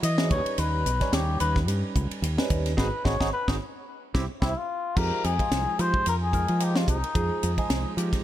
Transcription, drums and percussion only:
0.03 hi-hat pedal medium
0.03 ride medium
0.18 snare loud
0.31 kick loud
0.31 hi-hat pedal medium
0.31 ride medium
0.46 ride medium
0.58 hi-hat pedal medium
0.58 ride medium
0.86 hi-hat pedal medium
0.86 ride medium
1.01 kick medium
1.01 snare soft
1.01 ride medium
1.13 snare loud
1.13 hi-hat pedal medium
1.13 ride medium
1.40 hi-hat pedal medium
1.40 ride medium
1.56 kick medium
1.56 snare soft
1.68 hi-hat pedal medium
1.68 ride medium
1.96 kick medium
1.96 hi-hat pedal medium
1.96 ride soft
2.11 ride medium
2.24 hi-hat pedal medium
2.24 ride medium
2.38 snare loud
2.50 kick medium
2.50 hi-hat pedal medium
2.50 ride medium
2.66 snare soft
2.66 ride medium
2.78 kick medium
2.78 snare medium
3.05 kick medium
3.05 snare medium
3.21 kick medium
3.21 snare medium
3.48 kick medium
3.48 snare loud
4.15 kick medium
4.15 snare medium
4.42 kick medium
4.42 snare medium
4.97 kick loud
4.97 crash medium
5.24 hi-hat pedal medium
5.24 ride medium
5.39 kick medium
5.39 ride medium
5.52 snare loud
5.52 hi-hat pedal medium
5.52 ride medium
5.79 hi-hat pedal medium
5.79 ride medium
5.94 kick medium
6.06 hi-hat pedal medium
6.06 ride medium
6.33 kick medium
6.33 hi-hat pedal medium
6.33 ride medium
6.48 ride soft
6.60 hi-hat pedal medium
6.60 ride medium
6.76 snare medium
6.88 kick medium
6.88 hi-hat pedal medium
6.88 ride medium
7.04 ride medium
7.15 kick loud
7.15 hi-hat pedal medium
7.15 ride medium
7.43 hi-hat pedal medium
7.43 ride medium
7.58 kick medium
7.58 ride medium
7.70 snare loud
7.70 hi-hat pedal medium
7.70 ride medium
7.98 hi-hat pedal medium
7.98 ride medium
8.13 kick medium
8.13 snare soft
8.13 ride medium

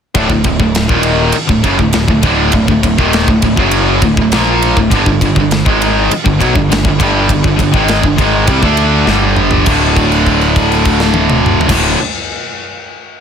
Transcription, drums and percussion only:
0.15 kick loud
0.15 ride loud
0.30 kick medium
0.44 kick medium
0.44 ride medium
0.60 kick medium
0.75 snare loud
0.75 ride medium
0.89 kick loud
1.03 ride medium
1.32 ride loud
1.49 kick medium
1.64 kick medium
1.64 ride medium
1.79 kick medium
1.93 snare loud
1.93 ride loud
2.08 kick medium
2.23 kick medium
2.23 ride medium
2.52 kick loud
2.52 ride loud
2.68 kick medium
2.83 kick medium
2.83 ride medium
2.98 kick medium
3.13 snare medium
3.13 ride loud
3.28 kick medium
3.42 kick medium
3.42 ride medium
3.57 kick medium
3.71 ride loud
4.02 kick medium
4.02 ride medium
4.17 kick medium
4.32 snare loud
4.32 ride medium
4.62 ride medium
4.77 kick medium
4.91 kick loud
4.91 ride loud
5.06 kick medium
5.21 kick medium
5.21 ride medium
5.36 kick medium
5.51 snare loud
5.51 ride medium
5.66 kick loud
5.82 ride medium
6.11 ride loud
6.26 kick medium
6.41 kick medium
6.41 ride medium
6.55 kick medium
6.72 snare loud
6.72 ride loud
6.85 kick loud
7.00 kick medium
7.00 ride medium
7.29 kick loud
7.29 ride loud
7.44 kick medium
7.59 kick medium
7.59 ride medium
7.74 kick medium
7.88 snare loud
7.88 ride loud
8.03 kick medium
8.18 kick medium
8.18 ride medium
8.47 kick loud
8.47 ride loud
8.63 kick medium
8.77 ride medium
9.07 snare medium
9.37 mid tom medium
9.51 floor tom medium
9.66 kick loud
9.66 crash loud
9.96 kick medium
9.96 crash soft
10.12 crash medium
10.26 kick soft
10.26 crash soft
10.41 crash medium
10.56 kick medium
10.56 crash soft
10.72 crash soft
10.85 kick medium
10.85 crash medium
11.00 snare loud
11.14 high tom loud
11.30 mid tom loud
11.46 mid tom loud
11.61 floor tom loud
11.69 kick loud
11.69 snare medium
11.69 crash loud

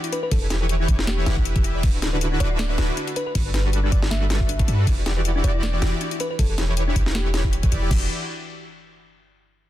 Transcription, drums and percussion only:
0.04 closed hi-hat medium
0.12 closed hi-hat medium
0.31 kick loud
0.31 closed hi-hat medium
0.31 crash soft
0.50 snare medium
0.50 closed hi-hat medium
0.69 closed hi-hat medium
0.88 kick medium
0.88 closed hi-hat medium
0.99 snare medium
1.07 snare loud
1.07 closed hi-hat medium
1.26 snare medium
1.26 closed hi-hat medium
1.37 kick medium
1.45 closed hi-hat medium
1.56 kick loud
1.56 closed hi-hat medium
1.64 closed hi-hat medium
1.83 kick loud
1.83 closed hi-hat medium
1.83 crash soft
2.02 snare medium
2.02 closed hi-hat medium
2.21 closed hi-hat medium
2.40 closed hi-hat medium
2.59 snare loud
2.59 closed hi-hat medium
2.78 snare medium
2.78 closed hi-hat medium
2.97 closed hi-hat medium
3.08 closed hi-hat medium
3.16 closed hi-hat medium
3.35 kick loud
3.35 closed hi-hat medium
3.35 crash medium
3.54 snare medium
3.54 closed hi-hat medium
3.73 closed hi-hat medium
3.92 kick medium
3.92 closed hi-hat medium
4.02 snare medium
4.11 snare loud
4.11 closed hi-hat medium
4.30 snare medium
4.30 closed hi-hat medium
4.41 kick medium
4.49 closed hi-hat medium
4.59 kick loud
4.59 closed hi-hat medium
4.68 closed hi-hat medium
4.87 kick loud
4.87 closed hi-hat medium
4.87 crash soft
5.06 snare medium
5.06 closed hi-hat medium
5.25 closed hi-hat medium
5.44 closed hi-hat medium
5.63 snare loud
5.63 closed hi-hat medium
5.82 snare medium
5.82 closed hi-hat medium
6.01 closed hi-hat medium
6.11 closed hi-hat medium
6.20 closed hi-hat medium
6.39 kick loud
6.39 closed hi-hat medium
6.39 crash soft
6.58 snare medium
6.58 closed hi-hat medium
6.77 closed hi-hat medium
6.96 kick medium
6.96 closed hi-hat medium
7.06 snare medium
7.15 snare loud
7.15 closed hi-hat medium
7.34 snare medium
7.34 closed hi-hat medium
7.44 kick medium
7.53 closed hi-hat medium
7.63 kick loud
7.63 closed hi-hat medium
7.72 closed hi-hat medium
7.91 kick loud
7.91 crash medium

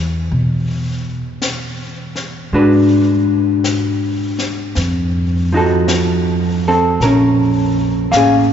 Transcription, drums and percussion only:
0.31 brush sweep soft
1.42 brush sweep soft
1.42 snare soft
1.42 hi-hat pedal soft
2.16 snare soft
2.53 brush sweep soft
3.64 brush sweep soft
3.64 snare soft
3.64 hi-hat pedal medium
4.39 snare soft
4.75 brush sweep soft
4.75 snare soft
5.88 brush sweep soft
5.88 snare soft
5.88 hi-hat pedal medium
7.01 brush sweep soft
7.01 snare soft
8.12 brush sweep soft
8.12 snare soft
8.12 hi-hat pedal soft

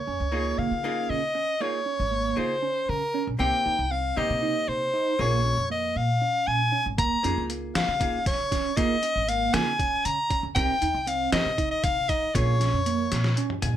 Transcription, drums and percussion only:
6.98 kick loud
6.98 closed hi-hat medium
7.24 closed hi-hat medium
7.50 closed hi-hat medium
7.75 snare loud
7.75 closed hi-hat medium
8.01 kick medium
8.01 closed hi-hat medium
8.26 kick loud
8.26 snare soft
8.26 closed hi-hat medium
8.52 kick medium
8.52 snare soft
8.52 closed hi-hat medium
8.77 kick loud
8.77 closed hi-hat medium
9.03 closed hi-hat medium
9.29 closed hi-hat medium
9.54 snare loud
9.54 closed hi-hat medium
9.79 kick medium
9.79 closed hi-hat medium
10.05 closed hi-hat medium
10.31 kick medium
10.31 closed hi-hat medium
10.56 kick loud
10.56 closed hi-hat medium
10.82 closed hi-hat medium
11.07 closed hi-hat medium
11.32 snare medium
11.32 closed hi-hat medium
11.58 kick medium
11.58 closed hi-hat medium
11.84 kick medium
11.84 closed hi-hat medium
12.09 kick medium
12.09 closed hi-hat medium
12.35 kick loud
12.35 closed hi-hat medium
12.61 snare soft
12.61 closed hi-hat medium
12.86 closed hi-hat medium
13.12 snare medium
13.12 closed hi-hat medium
13.24 snare medium
13.37 closed hi-hat medium
13.50 high tom medium
13.62 closed hi-hat medium
13.62 mid tom medium

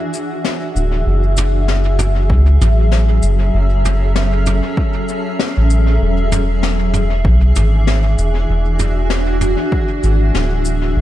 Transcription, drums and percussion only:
0.14 shaker medium
0.45 snare medium
0.76 shaker medium
1.37 mid tom medium
1.37 shaker medium
1.68 snare medium
1.99 mid tom medium
1.99 shaker medium
2.30 kick loud
2.61 mid tom medium
2.61 shaker medium
2.92 snare medium
3.23 shaker medium
3.85 mid tom medium
3.85 shaker medium
4.16 snare medium
4.46 mid tom medium
4.46 shaker medium
4.77 kick loud
5.08 shaker medium
5.39 snare medium
5.70 shaker medium
6.32 mid tom medium
6.32 shaker medium
6.63 snare medium
6.94 mid tom medium
6.94 shaker medium
7.25 kick loud
7.56 mid tom medium
7.56 shaker medium
7.87 snare medium
8.18 shaker medium
8.79 mid tom medium
8.79 shaker medium
9.10 snare medium
9.41 mid tom medium
9.41 shaker medium
9.72 kick loud
10.03 shaker medium
10.35 snare medium
10.65 shaker medium

